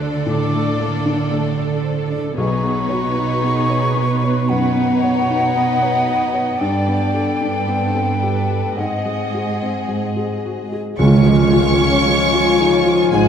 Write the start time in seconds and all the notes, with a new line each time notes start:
Already playing: D2 D3 A3 D4 A4 C5 D5
0.00 D5
0.26 A2 A4 D6
0.53 A3
0.80 A#3 D5
1.06 D4
1.31 A3 A4
1.58 D5
1.83 C5
2.11 D5
2.37 B1 B2 D#4 G#4 B4 C#5 C#6
2.64 B3
2.89 F#4 C#5
3.17 D#4
3.41 B3 G#4
3.70 C#5
3.94 B4
4.24 C#5
4.48 F#2 D#4 B4 C#5 F#5
4.76 B3
5.01 C#5
5.30 D#4
5.54 B3 D#5
5.82 C#5
6.08 B4
6.34 C#5
6.59 G2 D4 A4 B4 D5 G5
6.88 B3
7.14 A4
7.41 D4
7.66 B3 C4
7.95 A4
8.20 G4 B4
8.51 A4
8.76 G#2 C4 G#4 D#5 F#5
9.06 G#3
9.35 G#4
9.62 C4
9.89 G#3
10.17 G#4
10.45 F#4
10.72 G#4
10.98 C#2 C#3 F3 F4 C#5 G#5 C#6, tam-tam
11.25 F3 G#3
11.51 G#3 F4
11.77 C#4
12.04 G#3
12.31 F3 F4
12.58 C#3 D#4
12.84 F3 F4
13.10 G#1 G#2 G#3 G#4 G#5